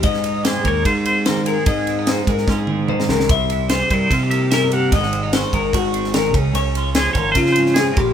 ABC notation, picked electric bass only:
X:1
M:4/4
L:1/8
Q:1/4=148
K:Ab
V:1 name="Picked electric bass" clef=bass
A,,3 E,, A,,4 | A,,3 A,, A,,3 D,, | C,,3 G,, C,4 | A,,,3 A,,, A,,,3 D,, |
D,,3 A,,, D,3 B,,, |]